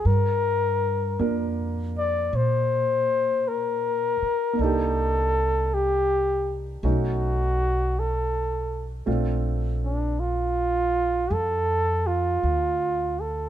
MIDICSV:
0, 0, Header, 1, 5, 480
1, 0, Start_track
1, 0, Key_signature, -2, "major"
1, 0, Tempo, 1136364
1, 22, Time_signature, 4, 2, 24, 8
1, 1462, Tempo, 1121495
1, 5755, End_track
2, 0, Start_track
2, 0, Title_t, "Flugelhorn"
2, 0, Program_c, 0, 56
2, 26, Note_on_c, 0, 70, 87
2, 677, Note_off_c, 0, 70, 0
2, 838, Note_on_c, 0, 74, 77
2, 995, Note_on_c, 0, 72, 85
2, 1001, Note_off_c, 0, 74, 0
2, 1470, Note_on_c, 0, 70, 82
2, 1476, Note_off_c, 0, 72, 0
2, 1956, Note_on_c, 0, 69, 88
2, 1962, Note_off_c, 0, 70, 0
2, 2437, Note_on_c, 0, 67, 79
2, 2444, Note_off_c, 0, 69, 0
2, 2836, Note_off_c, 0, 67, 0
2, 2919, Note_on_c, 0, 66, 80
2, 3402, Note_on_c, 0, 69, 67
2, 3408, Note_off_c, 0, 66, 0
2, 3793, Note_off_c, 0, 69, 0
2, 4196, Note_on_c, 0, 62, 67
2, 4345, Note_on_c, 0, 65, 88
2, 4351, Note_off_c, 0, 62, 0
2, 4829, Note_on_c, 0, 69, 94
2, 4835, Note_off_c, 0, 65, 0
2, 5146, Note_on_c, 0, 65, 83
2, 5152, Note_off_c, 0, 69, 0
2, 5635, Note_on_c, 0, 69, 65
2, 5641, Note_off_c, 0, 65, 0
2, 5755, Note_off_c, 0, 69, 0
2, 5755, End_track
3, 0, Start_track
3, 0, Title_t, "Grand piano"
3, 0, Program_c, 1, 0
3, 0, Control_c, 1, 64, 127
3, 26, Control_c, 1, 64, 0
3, 99, Control_c, 1, 64, 127
3, 504, Note_on_c, 1, 58, 46
3, 505, Note_on_c, 1, 62, 40
3, 509, Note_on_c, 1, 65, 36
3, 509, Note_on_c, 1, 70, 51
3, 1914, Note_off_c, 1, 58, 0
3, 1921, Note_on_c, 1, 58, 46
3, 1931, Note_off_c, 1, 62, 0
3, 1938, Note_on_c, 1, 62, 42
3, 1946, Note_off_c, 1, 65, 0
3, 1946, Note_off_c, 1, 70, 0
3, 1949, Control_c, 1, 64, 0
3, 1952, Note_on_c, 1, 63, 44
3, 1967, Note_on_c, 1, 67, 50
3, 2017, Control_c, 1, 64, 127
3, 2892, Note_off_c, 1, 58, 0
3, 2901, Note_off_c, 1, 62, 0
3, 2905, Note_off_c, 1, 63, 0
3, 2906, Note_on_c, 1, 57, 40
3, 2909, Control_c, 1, 64, 0
3, 2910, Note_on_c, 1, 66, 44
3, 2911, Note_on_c, 1, 61, 37
3, 2911, Note_on_c, 1, 63, 36
3, 2916, Note_off_c, 1, 67, 0
3, 2985, Control_c, 1, 64, 127
3, 3852, Note_off_c, 1, 57, 0
3, 3859, Note_on_c, 1, 57, 45
3, 3861, Note_on_c, 1, 60, 43
3, 3865, Note_off_c, 1, 66, 0
3, 3865, Note_on_c, 1, 62, 40
3, 3865, Note_on_c, 1, 65, 50
3, 3866, Note_off_c, 1, 61, 0
3, 3866, Note_off_c, 1, 63, 0
3, 3868, Control_c, 1, 64, 0
3, 3931, Control_c, 1, 64, 127
3, 5755, Note_off_c, 1, 57, 0
3, 5755, Note_off_c, 1, 60, 0
3, 5755, Note_off_c, 1, 62, 0
3, 5755, Note_off_c, 1, 65, 0
3, 5755, End_track
4, 0, Start_track
4, 0, Title_t, "Upright bass"
4, 0, Program_c, 2, 32
4, 21, Note_on_c, 2, 43, 64
4, 487, Note_off_c, 2, 43, 0
4, 504, Note_on_c, 2, 41, 60
4, 968, Note_off_c, 2, 41, 0
4, 983, Note_on_c, 2, 46, 69
4, 1769, Note_off_c, 2, 46, 0
4, 1944, Note_on_c, 2, 36, 61
4, 2887, Note_off_c, 2, 36, 0
4, 2904, Note_on_c, 2, 35, 69
4, 3845, Note_off_c, 2, 35, 0
4, 3862, Note_on_c, 2, 34, 63
4, 4801, Note_off_c, 2, 34, 0
4, 4819, Note_on_c, 2, 41, 70
4, 5283, Note_off_c, 2, 41, 0
4, 5302, Note_on_c, 2, 38, 62
4, 5755, Note_off_c, 2, 38, 0
4, 5755, End_track
5, 0, Start_track
5, 0, Title_t, "Muted upright bass strokes"
5, 1787, Note_on_c, 9, 29, 28
5, 1830, Note_off_c, 9, 29, 0
5, 5755, End_track
0, 0, End_of_file